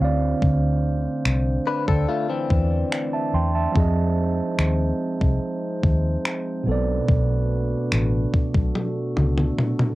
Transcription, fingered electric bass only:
0, 0, Header, 1, 2, 480
1, 0, Start_track
1, 0, Tempo, 833333
1, 243, Time_signature, 4, 2, 24, 8
1, 5731, End_track
2, 0, Start_track
2, 0, Title_t, "Fingered electric bass"
2, 0, Program_c, 0, 33
2, 5, Note_on_c, 0, 38, 87
2, 189, Note_off_c, 0, 38, 0
2, 244, Note_on_c, 0, 38, 99
2, 614, Note_off_c, 0, 38, 0
2, 723, Note_on_c, 0, 36, 94
2, 908, Note_off_c, 0, 36, 0
2, 1083, Note_on_c, 0, 38, 85
2, 1176, Note_off_c, 0, 38, 0
2, 1443, Note_on_c, 0, 40, 84
2, 1628, Note_off_c, 0, 40, 0
2, 1922, Note_on_c, 0, 40, 79
2, 2107, Note_off_c, 0, 40, 0
2, 2163, Note_on_c, 0, 41, 103
2, 2533, Note_off_c, 0, 41, 0
2, 2642, Note_on_c, 0, 39, 84
2, 2827, Note_off_c, 0, 39, 0
2, 3001, Note_on_c, 0, 36, 83
2, 3094, Note_off_c, 0, 36, 0
2, 3361, Note_on_c, 0, 39, 77
2, 3547, Note_off_c, 0, 39, 0
2, 3842, Note_on_c, 0, 35, 92
2, 4028, Note_off_c, 0, 35, 0
2, 4083, Note_on_c, 0, 35, 90
2, 4453, Note_off_c, 0, 35, 0
2, 4562, Note_on_c, 0, 33, 104
2, 4747, Note_off_c, 0, 33, 0
2, 4922, Note_on_c, 0, 35, 86
2, 5015, Note_off_c, 0, 35, 0
2, 5281, Note_on_c, 0, 37, 87
2, 5467, Note_off_c, 0, 37, 0
2, 5731, End_track
0, 0, End_of_file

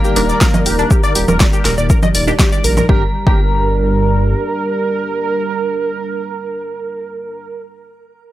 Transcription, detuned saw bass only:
0, 0, Header, 1, 2, 480
1, 0, Start_track
1, 0, Key_signature, -2, "minor"
1, 0, Tempo, 495868
1, 878, Time_signature, 4, 2, 24, 8
1, 8056, End_track
2, 0, Start_track
2, 0, Title_t, "Detuned saw bass"
2, 0, Program_c, 0, 39
2, 158, Note_on_c, 0, 27, 99
2, 315, Note_off_c, 0, 27, 0
2, 639, Note_on_c, 0, 27, 98
2, 795, Note_off_c, 0, 27, 0
2, 1118, Note_on_c, 0, 27, 93
2, 1197, Note_off_c, 0, 27, 0
2, 1243, Note_on_c, 0, 27, 99
2, 1394, Note_off_c, 0, 27, 0
2, 1599, Note_on_c, 0, 27, 108
2, 1678, Note_off_c, 0, 27, 0
2, 1722, Note_on_c, 0, 27, 90
2, 1874, Note_off_c, 0, 27, 0
2, 2078, Note_on_c, 0, 27, 93
2, 2235, Note_off_c, 0, 27, 0
2, 2558, Note_on_c, 0, 34, 92
2, 2715, Note_off_c, 0, 34, 0
2, 2798, Note_on_c, 0, 31, 100
2, 2935, Note_off_c, 0, 31, 0
2, 3163, Note_on_c, 0, 31, 96
2, 4200, Note_off_c, 0, 31, 0
2, 8056, End_track
0, 0, End_of_file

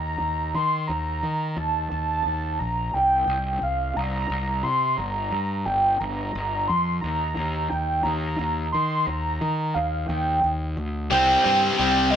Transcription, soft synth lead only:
0, 0, Header, 1, 2, 480
1, 0, Start_track
1, 0, Tempo, 681044
1, 629, Time_signature, 6, 3, 24, 8
1, 8570, End_track
2, 0, Start_track
2, 0, Title_t, "Soft synth lead"
2, 0, Program_c, 0, 80
2, 0, Note_on_c, 0, 82, 95
2, 388, Note_on_c, 0, 84, 94
2, 399, Note_off_c, 0, 82, 0
2, 616, Note_on_c, 0, 82, 90
2, 626, Note_off_c, 0, 84, 0
2, 1108, Note_on_c, 0, 81, 85
2, 1119, Note_off_c, 0, 82, 0
2, 1334, Note_off_c, 0, 81, 0
2, 1339, Note_on_c, 0, 81, 101
2, 1825, Note_on_c, 0, 82, 87
2, 1836, Note_off_c, 0, 81, 0
2, 2071, Note_on_c, 0, 79, 99
2, 2081, Note_off_c, 0, 82, 0
2, 2553, Note_off_c, 0, 79, 0
2, 2560, Note_on_c, 0, 77, 84
2, 2794, Note_on_c, 0, 82, 103
2, 2805, Note_off_c, 0, 77, 0
2, 3267, Note_on_c, 0, 84, 91
2, 3277, Note_off_c, 0, 82, 0
2, 3505, Note_on_c, 0, 82, 96
2, 3515, Note_off_c, 0, 84, 0
2, 3987, Note_on_c, 0, 79, 78
2, 3997, Note_off_c, 0, 82, 0
2, 4226, Note_on_c, 0, 82, 93
2, 4237, Note_off_c, 0, 79, 0
2, 4706, Note_on_c, 0, 84, 95
2, 4717, Note_off_c, 0, 82, 0
2, 4935, Note_off_c, 0, 84, 0
2, 4939, Note_on_c, 0, 82, 95
2, 5423, Note_on_c, 0, 79, 83
2, 5433, Note_off_c, 0, 82, 0
2, 5658, Note_off_c, 0, 79, 0
2, 5662, Note_on_c, 0, 82, 95
2, 6120, Note_off_c, 0, 82, 0
2, 6148, Note_on_c, 0, 84, 90
2, 6386, Note_on_c, 0, 82, 104
2, 6396, Note_off_c, 0, 84, 0
2, 6866, Note_on_c, 0, 77, 82
2, 6877, Note_off_c, 0, 82, 0
2, 7101, Note_on_c, 0, 79, 84
2, 7111, Note_off_c, 0, 77, 0
2, 7346, Note_off_c, 0, 79, 0
2, 7829, Note_on_c, 0, 79, 118
2, 8281, Note_off_c, 0, 79, 0
2, 8304, Note_on_c, 0, 79, 97
2, 8533, Note_on_c, 0, 75, 106
2, 8543, Note_off_c, 0, 79, 0
2, 8570, Note_off_c, 0, 75, 0
2, 8570, End_track
0, 0, End_of_file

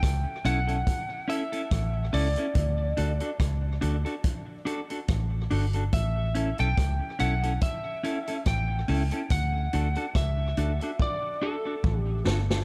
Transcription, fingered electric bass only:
0, 0, Header, 1, 2, 480
1, 0, Start_track
1, 0, Tempo, 843763
1, 1455, Time_signature, 4, 2, 24, 8
1, 7192, End_track
2, 0, Start_track
2, 0, Title_t, "Fingered electric bass"
2, 0, Program_c, 0, 33
2, 18, Note_on_c, 0, 37, 93
2, 136, Note_off_c, 0, 37, 0
2, 254, Note_on_c, 0, 35, 86
2, 466, Note_off_c, 0, 35, 0
2, 978, Note_on_c, 0, 33, 99
2, 1188, Note_off_c, 0, 33, 0
2, 1216, Note_on_c, 0, 37, 93
2, 1336, Note_off_c, 0, 37, 0
2, 1454, Note_on_c, 0, 38, 112
2, 1666, Note_off_c, 0, 38, 0
2, 1697, Note_on_c, 0, 38, 88
2, 1816, Note_off_c, 0, 38, 0
2, 1934, Note_on_c, 0, 37, 93
2, 2146, Note_off_c, 0, 37, 0
2, 2177, Note_on_c, 0, 38, 89
2, 2296, Note_off_c, 0, 38, 0
2, 2897, Note_on_c, 0, 33, 93
2, 3107, Note_off_c, 0, 33, 0
2, 3137, Note_on_c, 0, 31, 95
2, 3348, Note_off_c, 0, 31, 0
2, 3376, Note_on_c, 0, 33, 113
2, 3707, Note_off_c, 0, 33, 0
2, 3753, Note_on_c, 0, 35, 97
2, 3843, Note_off_c, 0, 35, 0
2, 3856, Note_on_c, 0, 37, 96
2, 3975, Note_off_c, 0, 37, 0
2, 4098, Note_on_c, 0, 35, 95
2, 4308, Note_off_c, 0, 35, 0
2, 4816, Note_on_c, 0, 33, 97
2, 5027, Note_off_c, 0, 33, 0
2, 5059, Note_on_c, 0, 37, 89
2, 5176, Note_off_c, 0, 37, 0
2, 5295, Note_on_c, 0, 38, 115
2, 5506, Note_off_c, 0, 38, 0
2, 5541, Note_on_c, 0, 38, 93
2, 5658, Note_off_c, 0, 38, 0
2, 5777, Note_on_c, 0, 37, 91
2, 5987, Note_off_c, 0, 37, 0
2, 6017, Note_on_c, 0, 38, 85
2, 6136, Note_off_c, 0, 38, 0
2, 6738, Note_on_c, 0, 33, 98
2, 6948, Note_off_c, 0, 33, 0
2, 6973, Note_on_c, 0, 31, 89
2, 7185, Note_off_c, 0, 31, 0
2, 7192, End_track
0, 0, End_of_file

